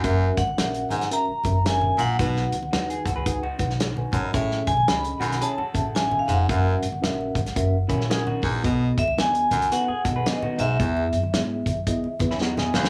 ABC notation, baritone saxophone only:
X:1
M:4/4
L:1/8
Q:"Swing" 1/4=112
K:Bmix
V:1 name="Baritone saxophone" clef=bass
F,, z2 G,, z3 ^A,, | B,, z6 F,, | A,, z2 F,, z3 G,, | F,, z6 E,, |
B,, z2 F,, z3 G,, | E,, z6 D,, |]